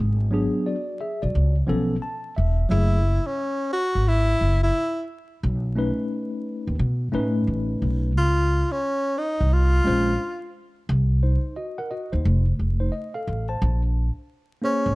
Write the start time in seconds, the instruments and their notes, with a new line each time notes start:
0.00 upright bass G#1
0.31 tine electric piano F#3 B3 D4 G#4
0.66 tine electric piano F#4 D5
1.01 tine electric piano G#4 E5
1.22 upright bass B1, tine electric piano F#4 D5
1.35 upright bass C#2
1.67 upright bass B1, tine electric piano F3 B3 C#4 A4
2.02 tine electric piano A5
2.36 upright bass E1, tine electric piano E5
2.69 upright bass F#1, tine electric piano F#3 A3 E4 G#4, tenor saxophone E4
3.27 tenor saxophone C#4
3.73 tenor saxophone F#4
3.95 upright bass G#1
4.08 tenor saxophone E4
4.41 upright bass F#1
4.63 tenor saxophone E4
5.43 upright bass B1
5.75 tine electric piano A3 C#4 D#4 B4
6.67 upright bass D#2
6.79 upright bass B2
7.12 upright bass A2, tine electric piano A3 C#4 D#4 B4
7.47 upright bass A1
7.82 upright bass B1
8.16 upright bass C#2, tenor saxophone F4
8.72 tenor saxophone C#4
9.18 tenor saxophone D#4
9.40 upright bass C2
9.53 tenor saxophone F4
9.84 upright bass A#1, tine electric piano G#3 C#4 F4 C5
10.89 upright bass C2
11.23 tine electric piano D#4 C5
11.56 tine electric piano F#4 D#5
11.78 tine electric piano A#4 F#5
11.91 tine electric piano F#4 D#5
12.12 upright bass D#2, tine electric piano D#4 C5
12.25 upright bass F1
12.59 upright bass F1
12.80 tine electric piano D#4 C5
12.92 tine electric piano D#5
13.14 tine electric piano A4 F5
13.27 upright bass A1
13.49 tine electric piano C5 A5
13.62 upright bass A#1
14.62 tine electric piano A#3 C#4 G#4 C5, tenor saxophone C#4
14.86 upright bass G#1